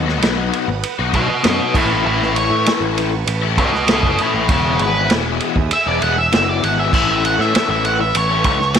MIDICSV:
0, 0, Header, 1, 7, 480
1, 0, Start_track
1, 0, Tempo, 609756
1, 1619, Time_signature, 4, 2, 24, 8
1, 6923, End_track
2, 0, Start_track
2, 0, Title_t, "String machine"
2, 0, Program_c, 0, 50
2, 0, Note_on_c, 0, 71, 79
2, 0, Note_on_c, 0, 78, 74
2, 0, Note_on_c, 0, 87, 84
2, 1363, Note_off_c, 0, 78, 0
2, 1365, Note_off_c, 0, 87, 0
2, 1373, Note_on_c, 0, 85, 87
2, 1375, Note_on_c, 0, 81, 77
2, 3509, Note_off_c, 0, 71, 0
2, 3514, Note_off_c, 0, 85, 0
2, 3515, Note_off_c, 0, 81, 0
2, 3521, Note_on_c, 0, 76, 75
2, 3525, Note_on_c, 0, 87, 92
2, 3532, Note_on_c, 0, 68, 84
2, 5429, Note_off_c, 0, 76, 0
2, 5432, Note_off_c, 0, 87, 0
2, 5435, Note_off_c, 0, 68, 0
2, 5444, Note_on_c, 0, 71, 85
2, 5444, Note_on_c, 0, 85, 97
2, 5446, Note_on_c, 0, 81, 74
2, 6923, Note_off_c, 0, 71, 0
2, 6923, Note_off_c, 0, 81, 0
2, 6923, Note_off_c, 0, 85, 0
2, 6923, End_track
3, 0, Start_track
3, 0, Title_t, "Lead electric guitar"
3, 0, Program_c, 1, 29
3, 905, Note_on_c, 1, 71, 81
3, 912, Note_on_c, 1, 75, 86
3, 1139, Note_off_c, 1, 75, 0
3, 1142, Note_off_c, 1, 71, 0
3, 1157, Note_on_c, 1, 71, 82
3, 1162, Note_on_c, 1, 75, 89
3, 1372, Note_off_c, 1, 71, 0
3, 1383, Note_on_c, 1, 69, 77
3, 1384, Note_off_c, 1, 75, 0
3, 1389, Note_on_c, 1, 73, 76
3, 1605, Note_off_c, 1, 69, 0
3, 1616, Note_off_c, 1, 73, 0
3, 1620, Note_on_c, 1, 69, 78
3, 1626, Note_on_c, 1, 73, 80
3, 1843, Note_off_c, 1, 69, 0
3, 1855, Note_off_c, 1, 73, 0
3, 1874, Note_on_c, 1, 73, 92
3, 2100, Note_off_c, 1, 73, 0
3, 2824, Note_on_c, 1, 71, 78
3, 2830, Note_on_c, 1, 75, 92
3, 3058, Note_off_c, 1, 75, 0
3, 3061, Note_off_c, 1, 71, 0
3, 3074, Note_on_c, 1, 71, 74
3, 3080, Note_on_c, 1, 75, 76
3, 3291, Note_off_c, 1, 71, 0
3, 3302, Note_off_c, 1, 75, 0
3, 3318, Note_on_c, 1, 69, 78
3, 3325, Note_on_c, 1, 73, 75
3, 3533, Note_off_c, 1, 69, 0
3, 3543, Note_off_c, 1, 73, 0
3, 3555, Note_on_c, 1, 68, 70
3, 3558, Note_on_c, 1, 73, 82
3, 3771, Note_off_c, 1, 68, 0
3, 3782, Note_off_c, 1, 73, 0
3, 3799, Note_on_c, 1, 71, 88
3, 4022, Note_off_c, 1, 71, 0
3, 4512, Note_on_c, 1, 76, 98
3, 4624, Note_off_c, 1, 76, 0
3, 4624, Note_on_c, 1, 74, 88
3, 4737, Note_off_c, 1, 74, 0
3, 4744, Note_on_c, 1, 78, 89
3, 4857, Note_off_c, 1, 78, 0
3, 4867, Note_on_c, 1, 76, 79
3, 4979, Note_off_c, 1, 76, 0
3, 4996, Note_on_c, 1, 76, 99
3, 5111, Note_off_c, 1, 76, 0
3, 5111, Note_on_c, 1, 74, 80
3, 5221, Note_off_c, 1, 74, 0
3, 5229, Note_on_c, 1, 78, 88
3, 5350, Note_off_c, 1, 78, 0
3, 5350, Note_on_c, 1, 76, 85
3, 5460, Note_off_c, 1, 76, 0
3, 5474, Note_on_c, 1, 76, 110
3, 5583, Note_off_c, 1, 76, 0
3, 5603, Note_on_c, 1, 76, 86
3, 5707, Note_off_c, 1, 76, 0
3, 5712, Note_on_c, 1, 78, 87
3, 5833, Note_off_c, 1, 78, 0
3, 5833, Note_on_c, 1, 76, 79
3, 5942, Note_off_c, 1, 76, 0
3, 5952, Note_on_c, 1, 76, 99
3, 6058, Note_off_c, 1, 76, 0
3, 6068, Note_on_c, 1, 76, 95
3, 6179, Note_off_c, 1, 76, 0
3, 6183, Note_on_c, 1, 78, 100
3, 6296, Note_off_c, 1, 78, 0
3, 6302, Note_on_c, 1, 76, 79
3, 6416, Note_off_c, 1, 76, 0
3, 6433, Note_on_c, 1, 73, 95
3, 6923, Note_off_c, 1, 73, 0
3, 6923, End_track
4, 0, Start_track
4, 0, Title_t, "Overdriven electric guitar"
4, 0, Program_c, 2, 29
4, 0, Note_on_c, 2, 47, 82
4, 0, Note_on_c, 2, 54, 89
4, 50, Note_on_c, 2, 66, 69
4, 57, Note_on_c, 2, 63, 66
4, 66, Note_on_c, 2, 59, 58
4, 161, Note_off_c, 2, 47, 0
4, 166, Note_off_c, 2, 54, 0
4, 171, Note_on_c, 2, 47, 94
4, 176, Note_off_c, 2, 63, 0
4, 176, Note_on_c, 2, 54, 98
4, 178, Note_off_c, 2, 59, 0
4, 178, Note_off_c, 2, 66, 0
4, 181, Note_on_c, 2, 59, 99
4, 186, Note_on_c, 2, 63, 106
4, 188, Note_on_c, 2, 66, 94
4, 285, Note_off_c, 2, 66, 0
4, 292, Note_off_c, 2, 63, 0
4, 294, Note_on_c, 2, 66, 70
4, 302, Note_on_c, 2, 63, 65
4, 307, Note_off_c, 2, 59, 0
4, 310, Note_on_c, 2, 59, 57
4, 528, Note_off_c, 2, 66, 0
4, 532, Note_off_c, 2, 63, 0
4, 535, Note_off_c, 2, 47, 0
4, 536, Note_off_c, 2, 54, 0
4, 537, Note_off_c, 2, 59, 0
4, 777, Note_on_c, 2, 66, 69
4, 786, Note_on_c, 2, 63, 60
4, 793, Note_on_c, 2, 59, 53
4, 892, Note_on_c, 2, 54, 77
4, 895, Note_off_c, 2, 63, 0
4, 896, Note_off_c, 2, 59, 0
4, 899, Note_on_c, 2, 59, 76
4, 900, Note_off_c, 2, 66, 0
4, 905, Note_on_c, 2, 63, 80
4, 910, Note_on_c, 2, 66, 89
4, 1006, Note_off_c, 2, 66, 0
4, 1011, Note_off_c, 2, 63, 0
4, 1017, Note_off_c, 2, 54, 0
4, 1018, Note_off_c, 2, 59, 0
4, 1130, Note_on_c, 2, 47, 93
4, 1138, Note_on_c, 2, 54, 94
4, 1139, Note_on_c, 2, 59, 84
4, 1146, Note_on_c, 2, 63, 94
4, 1148, Note_on_c, 2, 66, 101
4, 1360, Note_off_c, 2, 47, 0
4, 1364, Note_off_c, 2, 54, 0
4, 1368, Note_off_c, 2, 63, 0
4, 1369, Note_off_c, 2, 66, 0
4, 1375, Note_on_c, 2, 45, 92
4, 1380, Note_on_c, 2, 52, 83
4, 1381, Note_off_c, 2, 59, 0
4, 1384, Note_on_c, 2, 57, 83
4, 1386, Note_on_c, 2, 61, 88
4, 1387, Note_on_c, 2, 64, 96
4, 1485, Note_off_c, 2, 64, 0
4, 1488, Note_off_c, 2, 61, 0
4, 1488, Note_on_c, 2, 64, 63
4, 1495, Note_off_c, 2, 57, 0
4, 1497, Note_on_c, 2, 61, 61
4, 1504, Note_on_c, 2, 57, 59
4, 1598, Note_off_c, 2, 45, 0
4, 1608, Note_off_c, 2, 57, 0
4, 1608, Note_on_c, 2, 45, 100
4, 1611, Note_off_c, 2, 52, 0
4, 1613, Note_off_c, 2, 61, 0
4, 1614, Note_on_c, 2, 52, 94
4, 1617, Note_on_c, 2, 57, 88
4, 1618, Note_off_c, 2, 64, 0
4, 1621, Note_on_c, 2, 64, 100
4, 1622, Note_on_c, 2, 61, 97
4, 1966, Note_off_c, 2, 64, 0
4, 1969, Note_off_c, 2, 61, 0
4, 1969, Note_on_c, 2, 64, 78
4, 1978, Note_on_c, 2, 61, 67
4, 1980, Note_off_c, 2, 57, 0
4, 1990, Note_on_c, 2, 57, 62
4, 2082, Note_off_c, 2, 45, 0
4, 2091, Note_on_c, 2, 45, 102
4, 2092, Note_off_c, 2, 57, 0
4, 2093, Note_off_c, 2, 52, 0
4, 2095, Note_off_c, 2, 61, 0
4, 2096, Note_on_c, 2, 52, 101
4, 2101, Note_on_c, 2, 57, 101
4, 2104, Note_on_c, 2, 61, 102
4, 2107, Note_off_c, 2, 64, 0
4, 2110, Note_on_c, 2, 64, 120
4, 2213, Note_off_c, 2, 64, 0
4, 2214, Note_off_c, 2, 61, 0
4, 2216, Note_on_c, 2, 64, 76
4, 2224, Note_off_c, 2, 57, 0
4, 2224, Note_on_c, 2, 61, 70
4, 2233, Note_on_c, 2, 57, 64
4, 2453, Note_off_c, 2, 57, 0
4, 2453, Note_off_c, 2, 61, 0
4, 2455, Note_off_c, 2, 45, 0
4, 2455, Note_off_c, 2, 64, 0
4, 2461, Note_off_c, 2, 52, 0
4, 2696, Note_on_c, 2, 64, 78
4, 2704, Note_on_c, 2, 61, 62
4, 2711, Note_on_c, 2, 57, 62
4, 2810, Note_off_c, 2, 57, 0
4, 2812, Note_off_c, 2, 61, 0
4, 2812, Note_on_c, 2, 52, 73
4, 2819, Note_on_c, 2, 57, 76
4, 2822, Note_on_c, 2, 61, 87
4, 2824, Note_off_c, 2, 64, 0
4, 2827, Note_on_c, 2, 64, 84
4, 2928, Note_off_c, 2, 61, 0
4, 2932, Note_off_c, 2, 57, 0
4, 2933, Note_off_c, 2, 64, 0
4, 2937, Note_off_c, 2, 52, 0
4, 3052, Note_on_c, 2, 45, 91
4, 3057, Note_on_c, 2, 57, 100
4, 3058, Note_on_c, 2, 52, 94
4, 3064, Note_on_c, 2, 61, 100
4, 3068, Note_on_c, 2, 64, 93
4, 3292, Note_off_c, 2, 52, 0
4, 3294, Note_off_c, 2, 57, 0
4, 3295, Note_on_c, 2, 52, 60
4, 3297, Note_off_c, 2, 61, 0
4, 3303, Note_on_c, 2, 57, 77
4, 3306, Note_on_c, 2, 61, 77
4, 3308, Note_off_c, 2, 64, 0
4, 3311, Note_on_c, 2, 64, 76
4, 3414, Note_off_c, 2, 64, 0
4, 3416, Note_off_c, 2, 61, 0
4, 3417, Note_on_c, 2, 64, 62
4, 3421, Note_off_c, 2, 57, 0
4, 3425, Note_on_c, 2, 61, 58
4, 3430, Note_on_c, 2, 57, 60
4, 3521, Note_off_c, 2, 45, 0
4, 3528, Note_off_c, 2, 61, 0
4, 3530, Note_off_c, 2, 57, 0
4, 3531, Note_on_c, 2, 40, 88
4, 3535, Note_off_c, 2, 52, 0
4, 3538, Note_on_c, 2, 47, 87
4, 3538, Note_on_c, 2, 52, 97
4, 3543, Note_on_c, 2, 56, 100
4, 3545, Note_off_c, 2, 64, 0
4, 3547, Note_on_c, 2, 59, 98
4, 3548, Note_on_c, 2, 64, 95
4, 3896, Note_off_c, 2, 64, 0
4, 3899, Note_on_c, 2, 64, 76
4, 3901, Note_off_c, 2, 59, 0
4, 3902, Note_off_c, 2, 56, 0
4, 3904, Note_on_c, 2, 59, 66
4, 3912, Note_on_c, 2, 56, 62
4, 3914, Note_off_c, 2, 52, 0
4, 3917, Note_on_c, 2, 52, 66
4, 4005, Note_off_c, 2, 40, 0
4, 4007, Note_off_c, 2, 47, 0
4, 4014, Note_off_c, 2, 56, 0
4, 4014, Note_on_c, 2, 40, 91
4, 4016, Note_on_c, 2, 47, 109
4, 4021, Note_off_c, 2, 52, 0
4, 4024, Note_off_c, 2, 59, 0
4, 4024, Note_on_c, 2, 52, 103
4, 4024, Note_on_c, 2, 56, 100
4, 4027, Note_on_c, 2, 59, 112
4, 4028, Note_off_c, 2, 64, 0
4, 4031, Note_on_c, 2, 64, 104
4, 4137, Note_off_c, 2, 64, 0
4, 4140, Note_on_c, 2, 64, 72
4, 4144, Note_off_c, 2, 56, 0
4, 4147, Note_off_c, 2, 59, 0
4, 4150, Note_on_c, 2, 59, 73
4, 4154, Note_off_c, 2, 52, 0
4, 4154, Note_on_c, 2, 56, 65
4, 4158, Note_on_c, 2, 52, 58
4, 4372, Note_off_c, 2, 64, 0
4, 4376, Note_off_c, 2, 40, 0
4, 4377, Note_off_c, 2, 47, 0
4, 4377, Note_off_c, 2, 56, 0
4, 4379, Note_off_c, 2, 52, 0
4, 4381, Note_off_c, 2, 59, 0
4, 4613, Note_on_c, 2, 64, 74
4, 4625, Note_on_c, 2, 59, 68
4, 4626, Note_on_c, 2, 56, 62
4, 4631, Note_on_c, 2, 52, 55
4, 4726, Note_off_c, 2, 52, 0
4, 4731, Note_off_c, 2, 56, 0
4, 4736, Note_on_c, 2, 52, 74
4, 4741, Note_on_c, 2, 56, 74
4, 4743, Note_off_c, 2, 64, 0
4, 4744, Note_off_c, 2, 59, 0
4, 4747, Note_on_c, 2, 59, 81
4, 4753, Note_on_c, 2, 64, 84
4, 4846, Note_off_c, 2, 64, 0
4, 4851, Note_off_c, 2, 52, 0
4, 4851, Note_off_c, 2, 56, 0
4, 4853, Note_off_c, 2, 59, 0
4, 4975, Note_on_c, 2, 47, 93
4, 4976, Note_on_c, 2, 40, 93
4, 4983, Note_on_c, 2, 52, 103
4, 4984, Note_on_c, 2, 56, 96
4, 4986, Note_on_c, 2, 59, 94
4, 4988, Note_on_c, 2, 64, 98
4, 5206, Note_off_c, 2, 52, 0
4, 5211, Note_off_c, 2, 56, 0
4, 5215, Note_on_c, 2, 52, 61
4, 5221, Note_off_c, 2, 64, 0
4, 5221, Note_on_c, 2, 56, 72
4, 5222, Note_off_c, 2, 59, 0
4, 5225, Note_on_c, 2, 59, 70
4, 5231, Note_on_c, 2, 64, 65
4, 5326, Note_off_c, 2, 64, 0
4, 5335, Note_on_c, 2, 64, 62
4, 5338, Note_off_c, 2, 59, 0
4, 5339, Note_off_c, 2, 56, 0
4, 5342, Note_on_c, 2, 59, 63
4, 5344, Note_off_c, 2, 52, 0
4, 5348, Note_on_c, 2, 56, 57
4, 5353, Note_on_c, 2, 52, 53
4, 5438, Note_off_c, 2, 52, 0
4, 5442, Note_off_c, 2, 40, 0
4, 5442, Note_off_c, 2, 47, 0
4, 5442, Note_off_c, 2, 64, 0
4, 5445, Note_on_c, 2, 45, 84
4, 5447, Note_on_c, 2, 52, 85
4, 5449, Note_off_c, 2, 56, 0
4, 5453, Note_off_c, 2, 59, 0
4, 5457, Note_on_c, 2, 57, 96
4, 5457, Note_on_c, 2, 61, 95
4, 5463, Note_on_c, 2, 64, 91
4, 5799, Note_off_c, 2, 64, 0
4, 5808, Note_on_c, 2, 64, 76
4, 5809, Note_off_c, 2, 61, 0
4, 5815, Note_off_c, 2, 57, 0
4, 5818, Note_on_c, 2, 61, 64
4, 5825, Note_on_c, 2, 57, 55
4, 5921, Note_off_c, 2, 45, 0
4, 5927, Note_off_c, 2, 52, 0
4, 5930, Note_off_c, 2, 57, 0
4, 5930, Note_on_c, 2, 45, 102
4, 5933, Note_off_c, 2, 61, 0
4, 5936, Note_on_c, 2, 52, 98
4, 5937, Note_off_c, 2, 64, 0
4, 5940, Note_on_c, 2, 57, 98
4, 5942, Note_on_c, 2, 61, 99
4, 5947, Note_on_c, 2, 64, 98
4, 6043, Note_off_c, 2, 64, 0
4, 6050, Note_off_c, 2, 61, 0
4, 6052, Note_on_c, 2, 64, 70
4, 6057, Note_off_c, 2, 57, 0
4, 6060, Note_on_c, 2, 61, 60
4, 6066, Note_on_c, 2, 57, 59
4, 6279, Note_off_c, 2, 64, 0
4, 6284, Note_off_c, 2, 57, 0
4, 6284, Note_off_c, 2, 61, 0
4, 6285, Note_off_c, 2, 52, 0
4, 6293, Note_off_c, 2, 45, 0
4, 6530, Note_on_c, 2, 64, 65
4, 6540, Note_on_c, 2, 61, 58
4, 6548, Note_on_c, 2, 57, 62
4, 6643, Note_off_c, 2, 57, 0
4, 6645, Note_on_c, 2, 52, 81
4, 6648, Note_off_c, 2, 61, 0
4, 6652, Note_off_c, 2, 64, 0
4, 6652, Note_on_c, 2, 57, 88
4, 6657, Note_on_c, 2, 61, 77
4, 6662, Note_on_c, 2, 64, 77
4, 6754, Note_off_c, 2, 64, 0
4, 6758, Note_off_c, 2, 61, 0
4, 6759, Note_off_c, 2, 57, 0
4, 6764, Note_off_c, 2, 52, 0
4, 6880, Note_on_c, 2, 45, 98
4, 6882, Note_on_c, 2, 52, 92
4, 6887, Note_on_c, 2, 57, 103
4, 6892, Note_on_c, 2, 61, 104
4, 6895, Note_on_c, 2, 64, 106
4, 6923, Note_off_c, 2, 45, 0
4, 6923, Note_off_c, 2, 52, 0
4, 6923, Note_off_c, 2, 57, 0
4, 6923, Note_off_c, 2, 61, 0
4, 6923, Note_off_c, 2, 64, 0
4, 6923, End_track
5, 0, Start_track
5, 0, Title_t, "Picked electric bass"
5, 0, Program_c, 3, 34
5, 0, Note_on_c, 3, 39, 81
5, 167, Note_off_c, 3, 39, 0
5, 167, Note_on_c, 3, 35, 93
5, 394, Note_off_c, 3, 35, 0
5, 535, Note_on_c, 3, 32, 85
5, 647, Note_off_c, 3, 32, 0
5, 780, Note_on_c, 3, 35, 91
5, 1001, Note_off_c, 3, 35, 0
5, 1139, Note_on_c, 3, 42, 91
5, 1250, Note_off_c, 3, 42, 0
5, 1374, Note_on_c, 3, 33, 82
5, 1598, Note_off_c, 3, 33, 0
5, 1616, Note_on_c, 3, 33, 92
5, 1949, Note_off_c, 3, 33, 0
5, 1969, Note_on_c, 3, 45, 92
5, 2084, Note_off_c, 3, 45, 0
5, 2209, Note_on_c, 3, 33, 85
5, 2545, Note_off_c, 3, 33, 0
5, 2574, Note_on_c, 3, 33, 84
5, 2813, Note_off_c, 3, 33, 0
5, 2813, Note_on_c, 3, 37, 83
5, 3147, Note_off_c, 3, 37, 0
5, 3171, Note_on_c, 3, 30, 82
5, 3285, Note_off_c, 3, 30, 0
5, 3418, Note_on_c, 3, 33, 85
5, 3527, Note_off_c, 3, 33, 0
5, 3532, Note_on_c, 3, 28, 97
5, 3756, Note_off_c, 3, 28, 0
5, 3780, Note_on_c, 3, 32, 83
5, 4022, Note_off_c, 3, 32, 0
5, 4022, Note_on_c, 3, 28, 101
5, 4241, Note_off_c, 3, 28, 0
5, 4378, Note_on_c, 3, 39, 86
5, 4488, Note_off_c, 3, 39, 0
5, 4617, Note_on_c, 3, 28, 86
5, 4728, Note_off_c, 3, 28, 0
5, 4738, Note_on_c, 3, 28, 85
5, 4954, Note_off_c, 3, 28, 0
5, 4978, Note_on_c, 3, 30, 78
5, 5194, Note_off_c, 3, 30, 0
5, 5221, Note_on_c, 3, 32, 72
5, 5435, Note_off_c, 3, 32, 0
5, 5456, Note_on_c, 3, 33, 90
5, 5788, Note_off_c, 3, 33, 0
5, 5815, Note_on_c, 3, 45, 88
5, 5926, Note_off_c, 3, 45, 0
5, 6050, Note_on_c, 3, 33, 84
5, 6385, Note_off_c, 3, 33, 0
5, 6418, Note_on_c, 3, 33, 86
5, 6649, Note_off_c, 3, 33, 0
5, 6649, Note_on_c, 3, 37, 81
5, 6923, Note_off_c, 3, 37, 0
5, 6923, End_track
6, 0, Start_track
6, 0, Title_t, "Muted overdriven electric guitar strokes"
6, 538, Note_on_c, 9, 29, 42
6, 616, Note_off_c, 9, 29, 0
6, 1015, Note_on_c, 9, 29, 54
6, 1094, Note_off_c, 9, 29, 0
6, 2459, Note_on_c, 9, 29, 51
6, 2537, Note_off_c, 9, 29, 0
6, 2936, Note_on_c, 9, 29, 55
6, 3015, Note_off_c, 9, 29, 0
6, 4382, Note_on_c, 9, 29, 50
6, 4460, Note_off_c, 9, 29, 0
6, 4855, Note_on_c, 9, 29, 49
6, 4934, Note_off_c, 9, 29, 0
6, 6289, Note_on_c, 9, 29, 46
6, 6368, Note_off_c, 9, 29, 0
6, 6763, Note_on_c, 9, 29, 54
6, 6842, Note_off_c, 9, 29, 0
6, 6923, End_track
7, 0, Start_track
7, 0, Title_t, "Drums"
7, 66, Note_on_c, 9, 38, 35
7, 145, Note_off_c, 9, 38, 0
7, 176, Note_on_c, 9, 51, 84
7, 185, Note_on_c, 9, 38, 103
7, 255, Note_off_c, 9, 51, 0
7, 264, Note_off_c, 9, 38, 0
7, 420, Note_on_c, 9, 51, 60
7, 498, Note_off_c, 9, 51, 0
7, 657, Note_on_c, 9, 51, 83
7, 735, Note_off_c, 9, 51, 0
7, 893, Note_on_c, 9, 36, 68
7, 894, Note_on_c, 9, 51, 68
7, 971, Note_off_c, 9, 36, 0
7, 973, Note_off_c, 9, 51, 0
7, 1132, Note_on_c, 9, 51, 98
7, 1142, Note_on_c, 9, 38, 106
7, 1211, Note_off_c, 9, 51, 0
7, 1220, Note_off_c, 9, 38, 0
7, 1373, Note_on_c, 9, 36, 102
7, 1376, Note_on_c, 9, 49, 96
7, 1452, Note_off_c, 9, 36, 0
7, 1455, Note_off_c, 9, 49, 0
7, 1748, Note_on_c, 9, 38, 34
7, 1827, Note_off_c, 9, 38, 0
7, 1858, Note_on_c, 9, 51, 74
7, 1937, Note_off_c, 9, 51, 0
7, 2096, Note_on_c, 9, 51, 101
7, 2106, Note_on_c, 9, 38, 100
7, 2175, Note_off_c, 9, 51, 0
7, 2184, Note_off_c, 9, 38, 0
7, 2342, Note_on_c, 9, 51, 74
7, 2421, Note_off_c, 9, 51, 0
7, 2576, Note_on_c, 9, 51, 96
7, 2655, Note_off_c, 9, 51, 0
7, 2814, Note_on_c, 9, 36, 73
7, 2817, Note_on_c, 9, 51, 69
7, 2892, Note_off_c, 9, 36, 0
7, 2895, Note_off_c, 9, 51, 0
7, 2947, Note_on_c, 9, 38, 35
7, 3026, Note_off_c, 9, 38, 0
7, 3052, Note_on_c, 9, 51, 93
7, 3061, Note_on_c, 9, 38, 108
7, 3130, Note_off_c, 9, 51, 0
7, 3140, Note_off_c, 9, 38, 0
7, 3173, Note_on_c, 9, 36, 76
7, 3252, Note_off_c, 9, 36, 0
7, 3294, Note_on_c, 9, 51, 66
7, 3372, Note_off_c, 9, 51, 0
7, 3532, Note_on_c, 9, 51, 99
7, 3533, Note_on_c, 9, 36, 115
7, 3610, Note_off_c, 9, 51, 0
7, 3612, Note_off_c, 9, 36, 0
7, 3773, Note_on_c, 9, 51, 67
7, 3851, Note_off_c, 9, 51, 0
7, 4012, Note_on_c, 9, 51, 88
7, 4022, Note_on_c, 9, 38, 107
7, 4091, Note_off_c, 9, 51, 0
7, 4101, Note_off_c, 9, 38, 0
7, 4254, Note_on_c, 9, 51, 65
7, 4333, Note_off_c, 9, 51, 0
7, 4375, Note_on_c, 9, 36, 81
7, 4453, Note_off_c, 9, 36, 0
7, 4493, Note_on_c, 9, 51, 89
7, 4572, Note_off_c, 9, 51, 0
7, 4737, Note_on_c, 9, 51, 68
7, 4815, Note_off_c, 9, 51, 0
7, 4978, Note_on_c, 9, 51, 88
7, 4987, Note_on_c, 9, 38, 101
7, 5057, Note_off_c, 9, 51, 0
7, 5066, Note_off_c, 9, 38, 0
7, 5223, Note_on_c, 9, 51, 69
7, 5302, Note_off_c, 9, 51, 0
7, 5455, Note_on_c, 9, 36, 108
7, 5459, Note_on_c, 9, 57, 100
7, 5534, Note_off_c, 9, 36, 0
7, 5538, Note_off_c, 9, 57, 0
7, 5704, Note_on_c, 9, 51, 68
7, 5783, Note_off_c, 9, 51, 0
7, 5827, Note_on_c, 9, 38, 34
7, 5906, Note_off_c, 9, 38, 0
7, 5941, Note_on_c, 9, 51, 104
7, 5951, Note_on_c, 9, 38, 111
7, 6020, Note_off_c, 9, 51, 0
7, 6030, Note_off_c, 9, 38, 0
7, 6176, Note_on_c, 9, 51, 72
7, 6255, Note_off_c, 9, 51, 0
7, 6413, Note_on_c, 9, 51, 103
7, 6491, Note_off_c, 9, 51, 0
7, 6645, Note_on_c, 9, 51, 79
7, 6649, Note_on_c, 9, 36, 73
7, 6724, Note_off_c, 9, 51, 0
7, 6727, Note_off_c, 9, 36, 0
7, 6779, Note_on_c, 9, 38, 35
7, 6858, Note_off_c, 9, 38, 0
7, 6882, Note_on_c, 9, 51, 98
7, 6892, Note_on_c, 9, 38, 105
7, 6923, Note_off_c, 9, 38, 0
7, 6923, Note_off_c, 9, 51, 0
7, 6923, End_track
0, 0, End_of_file